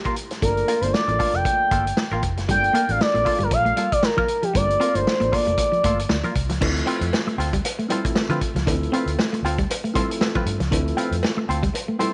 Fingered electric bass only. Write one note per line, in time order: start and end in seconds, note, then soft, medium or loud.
0.42 0.62 G1 loud
0.82 0.91 G1 medium
1.08 1.17 A1 medium
1.34 1.42 F1 medium
1.71 1.91 G1 medium
2.11 2.20 A1 medium
2.23 2.37 F1 medium
2.37 2.48 F#1 medium
2.48 2.68 G1 loud
2.89 2.98 A1 medium
3.15 3.24 A#1 medium
3.40 3.49 G1 medium
3.51 3.71 A#1 loud
4.55 4.75 G1 loud
4.95 5.04 G1 medium
5.21 5.30 A1 loud
5.47 5.56 F1 medium
5.84 6.04 G1 medium
6.10 6.21 D2 medium
6.36 6.49 C2 loud
6.49 6.58 C#2 medium
6.62 6.81 D2 loud
7.01 7.10 F2 loud
7.38 7.57 D2 loud
8.29 8.38 D3 medium
8.55 8.64 C#2 medium
8.67 8.86 D2 loud
9.06 9.15 D2 medium
9.43 9.62 D2 medium
10.46 10.57 G2 loud
10.60 10.69 C#2 medium
10.72 10.91 D2 loud
11.11 11.20 F2 loud
11.49 11.68 D2 medium